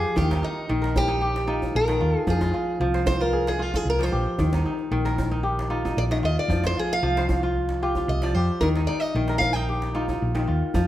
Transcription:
Already playing: F3 F4 G4 G#4
0.16 D#2 D#3 G4, djembe bass
0.30 D#4, djembe slap, djembe tone
0.43 D#4
0.69 A#1 D#3
0.82 A#4, djembe slap
0.96 G4, djembe tone, djembe bass
1.08 D#4, djembe slap
1.21 G4
1.36 djembe slap
1.47 D#4 F4
1.62 djembe tone, djembe bass
1.75 A#1 A#4
1.88 D#3, djembe slap
2.01 D#2 F4
2.18 G#4
2.27 F2 F3 G#4, djembe bass
2.41 F4, djembe slap, djembe tone
2.54 F4
2.80 C2 F3
2.94 C5, djembe slap
3.06 C5, djembe tone, djembe bass
3.21 F4 A#4, djembe slap
3.33 G#4
3.47 G#4, djembe slap
3.59 F4
3.74 F4 G#4, djembe tone, djembe bass
3.85 C2
3.90 A#4
3.99 F3 C5, djembe slap
4.12 A#1 G4
4.38 D#2 D#3, djembe slap, djembe bass
4.53 D#4, djembe slap, djembe tone
4.66 D#4
4.79 djembe slap
4.91 A#1 D#3
5.05 A#4, djembe slap
5.18 djembe tone, djembe bass
5.31 D#4
5.43 G4
5.59 djembe slap
5.70 D#4 F4
5.85 D#4, djembe slap, djembe tone, djembe bass
5.97 A#1 D5, djembe slap
6.11 D#3 D#5, djembe slap
6.23 D#2 F4 D#5
6.39 D5
6.48 F2 F3, djembe bass
6.63 F4 C5, djembe slap, djembe tone
6.77 F4 G#4
6.93 F5
7.03 C2 F3
7.17 C5, djembe slap
7.29 djembe tone, djembe bass
7.43 F4
7.69 djembe slap
7.82 F4 G4
7.95 F4, djembe tone, djembe bass
8.08 C2 D#5
8.22 F3 D5, djembe slap
8.34 F2 G4 C5
8.61 D#2 D#3 A#4, djembe bass
8.75 D#4, djembe slap
8.87 D#4 D5
9.00 D#5
9.15 A#1 D#3
9.28 A#4, djembe slap
9.38 F5, djembe tone, djembe bass
9.53 D#4 G5, djembe slap
9.69 G4
9.82 djembe slap
9.95 D#4 F4
10.08 D#4, djembe tone, djembe bass
10.22 A#1
10.35 D#3, djembe slap
10.47 D#2 F4
10.74 F2 F3, djembe bass

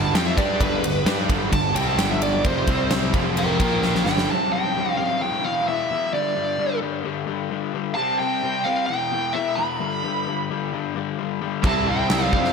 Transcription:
Already playing: G1 G2 D3 G3
0.02 A5
0.14 F2 F3 C4 F4 G5, snare, ride
0.26 E5
0.37 G2 G3 D4 G4 D5, kick, ride
0.60 G1 G2 D3 G3 B4, kick, ride
0.83 G1 G2 D3, ride
1.06 G2 G3 D4 G4, snare, ride
1.29 G1 G2 D3 G3, kick, ride
1.52 G1 G2 D3 A5, kick, ride
1.75 C2 C3 G3 C4 G5, ride
1.87 A5
1.98 G1 G2 D3 G3 G5, snare, ride
2.11 E5
2.22 D5, ride
2.44 F1 F2 C3 F3 C5, kick, ride
2.67 C2 C3 G3 C4, kick, ride
2.91 snare, ride
3.13 F1 F2 C3 F3, kick, ride
3.37 A#4 G5, ride
3.60 A#1 A#2 F3 A#3 A#4 G5, kick, ride
3.82 A#4 G5, snare
3.95 snare
4.05 G1 G2 D3 G3 G5, snare
4.18 snare
4.30 C3 G3 C4 A5
4.53 C3 G3 C4 G5
4.75 C3 G3 C4
4.97 C3 G3 C4 F5
5.21 E2 B2 E3 G5
5.44 E2 B2 E3 F5
5.68 E2 B2 E3 E5
5.91 E2 B2 E3
6.13 G2 D3 G3 D5
6.36 G2 D3 G3
6.58 G2 D3 G3
6.82 G2 D3 G3
7.05 G2 D3 G3
7.27 G2 D3 G3
7.50 G2 D3 G3
7.74 G2 D3 G3
7.95 C3 G3 C4 A5
8.19 C3 G3 C4 G5
8.43 C3 G3 C4
8.64 C3 G3 C4 F5
8.86 E2 B2 E3 G5
9.12 E2 B2 E3
9.33 E2 B2 E3 E5
9.55 E2 B2 E3 B5
9.80 G2 D3 G3
10.04 G2 D3 G3
10.27 G2 D3 G3
10.50 G2 D3 G3
10.73 G2 D3 G3
10.95 G2 D3 G3
11.18 G2 D3 G3
11.41 G2 D3 G3
11.63 C2 C3 G3 C4 E4 A5, kick, crash
11.86 C2 C3 G3 C4 E4
11.90 G5
12.10 C2 C3 G3 C4, snare, crash
12.32 F2 C3 G3 C4 D4 F5, kick
12.44 snare

